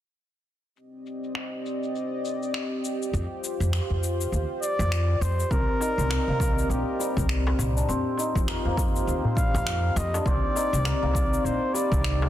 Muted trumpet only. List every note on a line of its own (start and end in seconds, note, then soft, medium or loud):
4.62 5.23 D5 loud
5.21 5.53 C5 loud
5.51 6.72 A#4 loud
6.71 7.30 G4 medium
9.37 9.99 F5 loud
9.97 10.20 D#5 loud
10.20 10.28 D#5 medium
10.27 11.46 D5 loud
11.45 11.75 C5 loud
11.74 12.29 D5 loud